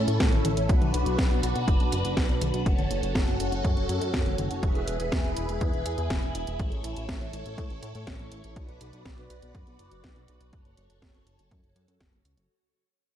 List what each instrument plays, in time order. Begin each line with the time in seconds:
Already playing: string machine C#4 E4 A4
0.08 analog synth bass A2, closed hi-hat
0.20 analog synth bass A1, kick, snare, closed hi-hat
0.32 analog synth bass A1, closed hi-hat, high tom
0.45 analog synth bass A1, closed hi-hat, high tom
0.57 analog synth bass A1, closed hi-hat
0.69 analog synth bass B1, string machine D4 F#4 B4, kick, closed hi-hat
0.82 analog synth bass B1, closed hi-hat, high tom
0.94 analog synth bass B1, closed hi-hat
1.06 analog synth bass B1, closed hi-hat
1.19 analog synth bass B1, kick, snare, closed hi-hat
1.31 analog synth bass B1, closed hi-hat
1.43 analog synth bass B1, closed hi-hat
1.56 analog synth bass B1, closed hi-hat
1.68 analog synth bass F#1, kick, closed hi-hat
1.80 analog synth bass B1, closed hi-hat
1.92 analog synth bass F#1, closed hi-hat
2.05 analog synth bass F#1, closed hi-hat
2.17 analog synth bass B1, kick, snare, closed hi-hat
2.29 analog synth bass B1, closed hi-hat
2.41 analog synth bass B1, closed hi-hat, high tom
2.54 analog synth bass B1, closed hi-hat
2.66 analog synth bass F#1, string machine C#4 F#4 A4, kick, closed hi-hat
2.78 analog synth bass F#1, closed hi-hat, high tom
2.91 analog synth bass F#1, closed hi-hat
3.03 analog synth bass F#1, closed hi-hat
3.15 analog synth bass F#1, kick, snare, closed hi-hat
3.28 analog synth bass F#1, closed hi-hat
3.40 analog synth bass F#1, closed hi-hat
3.52 analog synth bass F#1, closed hi-hat
3.64 analog synth bass F#2, kick, closed hi-hat
3.77 analog synth bass F#1, closed hi-hat
3.89 analog synth bass F#2, closed hi-hat
4.01 analog synth bass F#2, closed hi-hat
4.14 analog synth bass F#2, kick, snare, closed hi-hat
4.26 analog synth bass F#1, closed hi-hat, high tom
4.38 analog synth bass F#1, closed hi-hat, high tom
4.51 analog synth bass F#1, closed hi-hat
4.63 analog synth bass E1, string machine E4 G#4 B4, kick, closed hi-hat
4.75 analog synth bass E1, closed hi-hat
4.87 analog synth bass E1, closed hi-hat
5.00 analog synth bass E1, closed hi-hat
5.12 analog synth bass E1, kick, snare, closed hi-hat
5.24 analog synth bass E1, closed hi-hat
5.37 analog synth bass E1, closed hi-hat
5.49 analog synth bass E1, closed hi-hat
5.61 analog synth bass E2, kick, closed hi-hat
5.73 analog synth bass E1, closed hi-hat
5.86 analog synth bass E2, closed hi-hat
5.98 analog synth bass E2, closed hi-hat
6.10 analog synth bass E1, kick, snare, closed hi-hat
6.23 analog synth bass E1, closed hi-hat
6.35 analog synth bass E1, closed hi-hat
6.47 analog synth bass E1, closed hi-hat
6.59 analog synth bass A1, string machine A4 C#5, kick, closed hi-hat
6.72 analog synth bass A1, closed hi-hat
6.84 analog synth bass A1, closed hi-hat
6.96 analog synth bass A1, closed hi-hat
7.09 analog synth bass A1, kick, snare, closed hi-hat
7.21 analog synth bass A1, closed hi-hat
7.33 analog synth bass A1, closed hi-hat
7.46 analog synth bass A1, closed hi-hat
7.58 analog synth bass A2, kick, closed hi-hat
7.70 analog synth bass A1, closed hi-hat
7.83 analog synth bass A2, closed hi-hat
7.95 analog synth bass A2, closed hi-hat
8.07 analog synth bass A1, kick, snare, closed hi-hat
8.19 analog synth bass A1, closed hi-hat
8.32 analog synth bass A1, closed hi-hat
8.44 analog synth bass A1, closed hi-hat
8.56 analog synth bass B1, string machine F#4 B4 D5, kick, closed hi-hat
8.69 analog synth bass B1, closed hi-hat
8.81 analog synth bass B1, closed hi-hat
8.93 analog synth bass B1, closed hi-hat
9.06 analog synth bass B1, kick, snare, closed hi-hat
9.18 analog synth bass B1, closed hi-hat
9.30 analog synth bass B1, closed hi-hat
9.42 analog synth bass B1, closed hi-hat
9.55 analog synth bass F#1, kick, closed hi-hat
9.67 analog synth bass B1, closed hi-hat
9.79 analog synth bass F#1, closed hi-hat
9.91 analog synth bass F#1, closed hi-hat
10.04 analog synth bass B1, kick, snare, closed hi-hat
10.16 analog synth bass B1, closed hi-hat
10.28 analog synth bass B1, closed hi-hat
10.41 analog synth bass B1, closed hi-hat
10.53 analog synth bass F#1, string machine A4 C#5, kick, closed hi-hat
10.65 analog synth bass F#1, closed hi-hat
10.77 analog synth bass F#1, closed hi-hat
10.90 analog synth bass F#1, closed hi-hat
11.02 analog synth bass F#1, kick, snare, closed hi-hat
11.14 analog synth bass F#1, closed hi-hat
11.26 analog synth bass F#1, closed hi-hat
11.39 analog synth bass F#1, closed hi-hat
11.51 analog synth bass F#2, kick, closed hi-hat
11.63 analog synth bass F#1, closed hi-hat
11.76 analog synth bass F#2, closed hi-hat
11.88 analog synth bass F#2, closed hi-hat
12.01 analog synth bass F#1, kick, snare, closed hi-hat
12.13 analog synth bass F#1, closed hi-hat
12.25 analog synth bass C#2, closed hi-hat
12.37 analog synth bass F#1, closed hi-hat